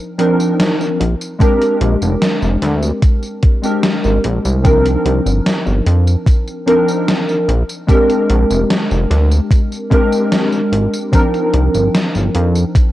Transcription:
Already playing: F3 C4 D4 D#4 A#4
0.18 F3 C4 D4 D#4 A#4, closed hi-hat
0.40 tambourine
0.60 snare, closed hi-hat, tambourine
0.81 tambourine
1.00 A#1, closed hi-hat
1.21 tambourine
1.39 G#3 C4 D4 G4 A#4, kick, closed hi-hat, tambourine
1.62 closed hi-hat, tambourine
1.81 A#1, closed hi-hat
2.02 F1, tambourine
2.22 snare, closed hi-hat, tambourine
2.42 F1, tambourine
2.62 D2, snare, closed hi-hat
2.83 tambourine
3.02 kick, closed hi-hat, tambourine
3.23 tambourine
3.43 kick, closed hi-hat
3.62 G#3 C4 D4 G4 A#4, tambourine
3.83 snare, closed hi-hat, tambourine
4.04 G#1, tambourine
4.24 A#1, closed hi-hat
4.45 C2, tambourine
4.63 F3 C4 D4 D#4 A#4, kick, closed hi-hat, tambourine
4.85 closed hi-hat, tambourine
5.05 C2, closed hi-hat
5.26 G1, tambourine
5.46 snare, closed hi-hat, tambourine
5.66 G1, tambourine
5.87 F2, closed hi-hat
6.07 tambourine
6.27 kick, closed hi-hat, tambourine
6.48 tambourine
6.66 F3 C4 D4 D#4 A#4, closed hi-hat
6.89 tambourine
7.08 snare, closed hi-hat, tambourine
7.29 tambourine
7.48 A#1, closed hi-hat
7.69 tambourine
7.87 G#3 C4 D4 G4 A#4, kick, closed hi-hat, tambourine
8.10 closed hi-hat, tambourine
8.30 A#1, closed hi-hat
8.51 F1, tambourine
8.70 snare, closed hi-hat, tambourine
8.91 F1, tambourine
9.10 D2, snare, closed hi-hat
9.31 tambourine
9.51 kick, closed hi-hat, tambourine
9.72 tambourine
9.90 G#3 C4 D4 G4 A#4, kick, closed hi-hat
10.12 tambourine
10.32 snare, closed hi-hat, tambourine
10.53 tambourine
10.72 G#1, closed hi-hat
10.93 tambourine
11.11 F3 C4 D4 D#4 A#4, kick, closed hi-hat, tambourine
11.34 closed hi-hat, tambourine
11.54 C2, closed hi-hat
11.74 G1, tambourine
11.95 snare, closed hi-hat, tambourine
12.15 G1, tambourine
12.35 F2, closed hi-hat
12.55 tambourine
12.75 kick, closed hi-hat, tambourine

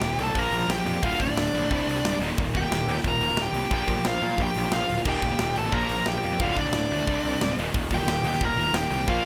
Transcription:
Already playing: D#2 A#2 D#3 A#3 F4 G4 G5
0.01 D#1 D#2 A#2, snare, open hi-hat
0.18 C2 D#2 A#2 A4, open hi-hat
0.23 A#2 A5
0.29 D#2 A#2
0.35 A#1 A#2 F3 A#3 A#4 C5 A#5, kick, open hi-hat
0.51 A#1 A#2 F3, open hi-hat
0.62 A#2 F3
0.68 A#1 A#2 F3 G4 G5, snare, open hi-hat
0.78 A#2 F3
0.85 F2 A#2 F3, open hi-hat
0.94 A#2 F3
1.02 D1 D2 A2 D3 D4 F4 A4 D5 F5, kick, open hi-hat
1.19 D1 D2 A2 D4 D5, kick, open hi-hat
1.29 D2 A2
1.37 D1 D2 A2, snare, open hi-hat
1.53 A#1 D2 A2, open hi-hat
1.63 D2 A2
1.70 C2 C3 G3 C4 G4, kick, open hi-hat
1.87 C2 C3 G3, open hi-hat
1.96 C3 G3
2.02 D1 C3 G3, snare, open hi-hat
2.15 C3 G3
2.19 D#1 D#2 A#2 D#3 A#3 F4, open hi-hat
2.30 D#2 A#2
2.38 D#1 D#2 A#2, kick, open hi-hat
2.55 D#1 D#2 A#2 G4 G5, kick, open hi-hat
2.63 D#2 A#2
2.71 D#1 D#2 A#2, snare, open hi-hat
2.87 D#2 A#2 G4, open hi-hat
2.92 G5
2.97 D#2 A#2, snare
3.04 D#1 D#2 A#2 A#4 A#5, kick, open hi-hat
3.19 D#1 D#2 A#2, open hi-hat
3.31 D#2 A#2
3.35 D#1 D#2, snare, open hi-hat
3.39 A#2 G4 G5
3.47 D#2 A#2
3.53 C2, open hi-hat
3.57 D#2 A#2
3.65 D#2 A#2
3.70 A#1 A#2 F3 A#3 F4 G4 C5 G5, kick, open hi-hat
3.87 A#1 A#2 F3, kick, open hi-hat
3.98 A#2 F3
4.05 A#1 A#2 F3 F4 F5, snare, open hi-hat
4.22 A#2 F3, open hi-hat
4.32 A#2 F3
4.38 A#1 A#2 F3 G4, kick, open hi-hat
4.42 G5
4.54 A#1 A#2 F3, open hi-hat
4.64 A#2 F3
4.72 A#1 A#2 F3 F5, snare, open hi-hat
4.76 F4
4.81 A#2 F3
4.89 D1 A#2 F3, open hi-hat
4.98 A#2 F3
5.05 D#1 D#2 A#2 D#3 F4 G4 G5, kick, crash
5.22 D#1 D#2 A#2, kick, open hi-hat
5.31 D#2 A#2
5.39 D#1 D#2 A#2, snare, open hi-hat
5.56 A1 D#2 A#2 A4 A5, open hi-hat
5.66 D#2 A#2
5.72 A#1 A#2 F3 A#3 A#4 C5 A#5, kick, open hi-hat
5.89 A#1 A#2 F3, open hi-hat
5.99 A#2 F3
6.06 A#1 A#2 F3 G4 G5, snare, open hi-hat
6.16 A#2 F3
6.23 F2 A#2 F3, open hi-hat
6.32 A#2 F3
6.39 D1 D2 A2 D4 F4 A4 D5 F5, kick, open hi-hat
6.43 D3
6.56 D1 D2 A2 D4 D5, kick, open hi-hat
6.67 D2 A2
6.73 D1 D2 A2, snare, open hi-hat
6.91 D2 A2, open hi-hat
7.00 D2 A2
7.07 C2 C3 G3 C4 G4 D5, kick, open hi-hat
7.25 C2 C3 G3, open hi-hat
7.33 C3 G3
7.41 D1 C3 G3, snare, open hi-hat
7.51 C3 G3
7.57 D#1 D#2 A#2 D#3 A#3 F4, open hi-hat
7.68 D#2 A#2
7.74 D#1 D#2 A#2, kick, open hi-hat
7.91 D#1 D#2 A#2 G4 G5, kick, open hi-hat
8.01 D#2 A#2
8.07 D#1 D#2 A#2, snare, open hi-hat
8.24 D#2 A#2 G4 G5, open hi-hat
8.33 D#2 A#2, snare
8.41 D#1 D#2 A#2 A#4 A#5, kick, open hi-hat
8.57 D#1 D#2 A#2, open hi-hat
8.67 D#2 A#2
8.73 D#1 D#2 A#2 G4 G5, snare, open hi-hat
8.83 D#2 A#2
8.90 C2 D#2 A#2, open hi-hat
8.99 D#2 A#2
9.07 A#1 A#2 F3 A#3 F4 C5 F5, kick, open hi-hat

